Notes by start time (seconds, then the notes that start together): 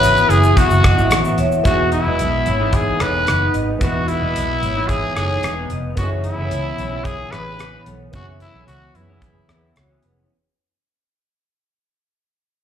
Already playing: G#1 F#2 C#3 E3 B3 C#4 E4 F#4 B4
0.03 closed hi-hat, shaker
0.14 E3 B3 E4, shaker
0.29 F#1 G#4 E5 G#5, closed hi-hat, shaker
0.43 shaker
0.55 C#3 E3 B3 E4 F#4, kick, closed hi-hat, shaker
0.70 F#1, shaker
0.83 F#1 D#5 F#5, kick, cross-stick, closed hi-hat, shaker
0.96 G#1 F#2 C#3 E3 B3 E4, shaker
1.11 A1, cross-stick, closed hi-hat, shaker
1.23 E3 B3 E4, shaker
1.38 D#1 C#5 E5, closed hi-hat, shaker
1.52 shaker
1.63 E1 E3 G#3 B3 D#4 E4 F#4 B4 E5, kick, closed hi-hat
1.68 G#4
1.92 E4, closed hi-hat
2.04 E1 G#3 B3 B4 D#5
2.19 B1, closed hi-hat
2.46 G#1 C#5 E5, closed hi-hat
2.60 E3 G#3 B3 D#4
2.73 G#4, kick, closed hi-hat
2.99 E1 E3 G#3 B3 D#4 A4 B4 C#5, cross-stick, closed hi-hat
3.27 F#1, cross-stick, closed hi-hat
3.38 G#3 B3 D#4
3.54 G#1 B4 D#5, closed hi-hat
3.79 E1 E3 G#3 B3 D#4 E4 F#4 B4 E5, kick, closed hi-hat
3.84 B4
4.08 E4, closed hi-hat
4.22 E1 G#3 B3 B4 D#5
4.36 B1, closed hi-hat
4.62 G#1 C#5 E5, closed hi-hat
4.75 E3 G#3 B3 D#4
4.88 G#4, kick, closed hi-hat
5.15 F#1 E3 G#3 B3 D#4 G#4 A4 C#5, cross-stick, closed hi-hat
5.43 E1 G#4 B4, cross-stick, closed hi-hat
5.56 G#3 B3 D#4
5.70 F1 B4 D#5, closed hi-hat
5.96 F#1 F#2 C#3 E3 B3 C#4 E4 F#4 C#5 E5, kick, closed hi-hat
6.01 G#4
6.24 E4, closed hi-hat
6.37 F#1 E3 B3 C#4 A4 C#5
6.51 C#2, closed hi-hat
6.78 B1 C#5 E5, closed hi-hat
6.91 F#2 C#3 E3 B3 C#4
7.04 G#4, kick, closed hi-hat
7.31 A1 F#2 C#3 E3 B3 C#4 G#4 B4, cross-stick, closed hi-hat
7.59 cross-stick, closed hi-hat
7.71 E3 B3 C#4
7.86 B1 A4 C#5, closed hi-hat
8.11 F#1 F#2 C#3 E3 B3 C#4 E4 F#4 E5, kick, closed hi-hat
8.16 G#4 C#5
8.40 E4, closed hi-hat
8.53 B1 E3 B3 C#4 A4 C#5
8.67 C#2 F#4, closed hi-hat
8.94 F#2 E4 G#4 B4, closed hi-hat
9.08 F#2 C#3 E3 B3 C#4
9.22 kick, closed hi-hat
9.48 E2 F#2 C#3 E3 B3 C#4 G#4 B4, cross-stick, closed hi-hat
9.76 C#2 F#4 C#5, cross-stick, closed hi-hat
9.88 E3 B3 C#4
10.03 F1 G#4 B4, closed hi-hat